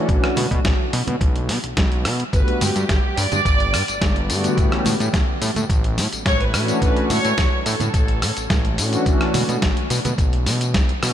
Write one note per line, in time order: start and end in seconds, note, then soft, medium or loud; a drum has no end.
0.08 0.18 B1 medium
0.08 0.26 E3 loud
0.08 0.26 A3 medium
0.08 0.26 C#4 medium
0.08 0.26 D4 medium
0.08 0.26 F#4 loud
0.08 kick loud
0.08 closed hi-hat medium
0.24 cross-stick medium
0.24 closed hi-hat soft
0.36 0.47 B2 loud
0.36 open hi-hat loud
0.36 high conga medium
0.36 low conga medium
0.51 0.60 B2 loud
0.51 kick medium
0.51 closed hi-hat soft
0.65 0.74 B1 medium
0.65 kick loud
0.65 snare loud
0.65 closed hi-hat medium
0.93 1.03 B2 loud
0.93 open hi-hat loud
1.07 1.16 B2 medium
1.07 closed hi-hat soft
1.07 high conga medium
1.07 low conga medium
1.21 1.51 B1 loud
1.21 kick loud
1.21 closed hi-hat medium
1.36 closed hi-hat soft
1.49 1.59 B2 medium
1.49 snare soft
1.49 open hi-hat loud
1.64 1.75 B1 soft
1.64 closed hi-hat soft
1.77 2.07 B1 loud
1.77 kick loud
1.77 snare loud
1.77 closed hi-hat medium
1.77 high conga medium
1.92 closed hi-hat soft
2.05 2.24 B2 medium
2.05 cross-stick medium
2.05 open hi-hat loud
2.20 closed hi-hat soft
2.33 2.43 G1 medium
2.33 2.50 D3 loud
2.33 2.50 G3 medium
2.33 2.50 A3 medium
2.33 2.50 B3 medium
2.33 2.50 F#4 loud
2.33 2.59 B4 loud
2.33 kick loud
2.33 closed hi-hat medium
2.33 tambourine soft
2.48 closed hi-hat soft
2.61 2.71 G2 loud
2.61 3.18 G4 medium
2.61 open hi-hat loud
2.61 tambourine medium
2.61 high conga medium
2.61 low conga medium
2.76 2.85 G2 loud
2.76 closed hi-hat medium
2.76 tambourine soft
2.89 2.99 G1 medium
2.89 kick loud
2.89 snare loud
2.89 closed hi-hat medium
2.89 tambourine soft
3.18 3.27 G2 loud
3.18 4.30 D5 loud
3.18 open hi-hat loud
3.18 tambourine medium
3.32 3.41 G2 medium
3.32 closed hi-hat soft
3.32 tambourine soft
3.32 high conga medium
3.32 low conga medium
3.45 3.75 G1 loud
3.45 kick loud
3.45 closed hi-hat medium
3.45 tambourine soft
3.60 closed hi-hat soft
3.74 3.83 G2 medium
3.74 cross-stick medium
3.74 open hi-hat loud
3.74 tambourine medium
3.88 3.99 G1 soft
3.88 closed hi-hat soft
3.88 tambourine soft
4.01 4.31 G1 loud
4.01 kick loud
4.01 snare loud
4.01 closed hi-hat medium
4.01 tambourine soft
4.01 high conga loud
4.16 closed hi-hat soft
4.29 4.48 G2 medium
4.29 4.53 D3 medium
4.29 4.53 G3 medium
4.29 4.53 A3 medium
4.29 4.54 B3 medium
4.29 4.54 F#4 loud
4.29 open hi-hat loud
4.29 tambourine medium
4.44 closed hi-hat medium
4.44 tambourine soft
4.57 4.67 A1 medium
4.57 4.74 E3 loud
4.57 4.74 A3 medium
4.57 4.74 B3 medium
4.57 4.75 C#4 medium
4.57 4.75 G4 loud
4.57 kick loud
4.57 closed hi-hat medium
4.57 tambourine soft
4.72 cross-stick medium
4.72 closed hi-hat soft
4.85 4.95 A2 loud
4.85 open hi-hat loud
4.85 tambourine medium
4.85 high conga medium
4.85 low conga medium
5.00 5.09 A2 loud
5.00 closed hi-hat medium
5.00 tambourine soft
5.13 5.23 A1 medium
5.13 kick loud
5.13 snare loud
5.13 closed hi-hat medium
5.13 tambourine soft
5.42 5.51 A2 loud
5.42 open hi-hat loud
5.42 tambourine medium
5.55 5.65 A2 medium
5.55 closed hi-hat medium
5.55 tambourine soft
5.55 high conga medium
5.55 low conga medium
5.70 6.00 A1 loud
5.70 kick loud
5.70 closed hi-hat medium
5.70 tambourine soft
5.84 closed hi-hat soft
5.98 6.08 A2 medium
5.98 snare soft
5.98 open hi-hat medium
5.98 tambourine medium
6.13 6.24 A1 soft
6.13 closed hi-hat soft
6.13 tambourine soft
6.26 6.55 A1 loud
6.26 6.39 C#5 loud
6.26 kick loud
6.26 snare loud
6.26 closed hi-hat medium
6.26 tambourine soft
6.26 high conga medium
6.40 6.80 B4 loud
6.40 closed hi-hat soft
6.53 6.72 A2 medium
6.53 6.78 E3 medium
6.53 6.78 A3 medium
6.53 6.78 C#4 medium
6.53 6.78 D4 medium
6.53 6.78 F#4 loud
6.53 cross-stick medium
6.53 open hi-hat loud
6.53 tambourine medium
6.68 closed hi-hat soft
6.68 tambourine soft
6.81 6.91 A1 medium
6.81 6.99 E3 medium
6.81 6.99 A3 medium
6.81 6.99 C#4 medium
6.81 6.99 D4 medium
6.81 6.99 F#4 loud
6.81 7.08 B4 loud
6.81 kick loud
6.81 closed hi-hat medium
6.81 tambourine soft
6.97 closed hi-hat soft
7.10 7.19 A2 loud
7.10 7.62 C#5 loud
7.10 open hi-hat medium
7.10 tambourine medium
7.10 high conga medium
7.10 low conga medium
7.25 7.33 A2 loud
7.25 closed hi-hat medium
7.25 tambourine soft
7.38 7.47 A1 medium
7.38 kick loud
7.38 snare loud
7.38 closed hi-hat medium
7.38 tambourine soft
7.65 7.75 A2 loud
7.65 8.74 A4 medium
7.65 open hi-hat loud
7.65 tambourine medium
7.80 7.90 A2 medium
7.80 closed hi-hat medium
7.80 tambourine soft
7.80 high conga medium
7.80 low conga medium
7.94 8.24 A1 loud
7.94 kick loud
7.94 closed hi-hat medium
7.94 tambourine soft
8.08 closed hi-hat soft
8.22 8.32 A2 medium
8.22 cross-stick medium
8.22 open hi-hat loud
8.22 tambourine medium
8.37 8.48 A1 soft
8.37 closed hi-hat medium
8.37 tambourine soft
8.50 8.80 A1 loud
8.50 kick loud
8.50 snare loud
8.50 closed hi-hat medium
8.50 tambourine soft
8.50 high conga medium
8.65 closed hi-hat soft
8.78 8.97 A2 medium
8.78 9.02 E3 medium
8.78 9.02 A3 medium
8.78 9.02 C#4 medium
8.78 9.02 D4 medium
8.78 9.03 F#4 loud
8.78 open hi-hat loud
8.78 tambourine medium
8.93 closed hi-hat medium
8.93 tambourine soft
9.06 9.16 B1 medium
9.06 9.23 E3 loud
9.06 9.23 A3 medium
9.06 9.24 C#4 medium
9.06 9.24 D4 medium
9.06 9.24 F#4 loud
9.06 kick loud
9.06 closed hi-hat medium
9.06 tambourine soft
9.21 cross-stick medium
9.21 closed hi-hat soft
9.34 9.44 B2 loud
9.34 open hi-hat loud
9.34 tambourine medium
9.34 high conga medium
9.34 low conga loud
9.49 9.58 B2 loud
9.49 closed hi-hat medium
9.49 tambourine soft
9.62 9.72 B1 medium
9.62 kick loud
9.62 snare loud
9.62 closed hi-hat medium
9.62 tambourine soft
9.77 closed hi-hat soft
9.90 10.00 B2 loud
9.90 open hi-hat loud
9.90 tambourine medium
10.05 10.14 B2 medium
10.05 closed hi-hat medium
10.05 tambourine soft
10.05 high conga medium
10.05 low conga loud
10.18 10.48 B1 medium
10.18 kick loud
10.18 closed hi-hat medium
10.18 tambourine soft
10.33 closed hi-hat soft
10.46 10.76 B2 medium
10.46 snare soft
10.46 open hi-hat loud
10.46 tambourine medium
10.61 closed hi-hat medium
10.61 tambourine soft
10.74 10.93 B1 medium
10.74 kick loud
10.74 snare loud
10.74 closed hi-hat medium
10.74 tambourine soft
10.74 high conga medium
10.89 closed hi-hat soft
11.02 11.12 B2 medium
11.02 11.13 E3 medium
11.02 11.13 A3 medium
11.02 11.13 C#4 medium
11.02 11.13 D4 medium
11.02 11.13 F#4 loud
11.02 cross-stick medium
11.02 open hi-hat loud
11.02 tambourine medium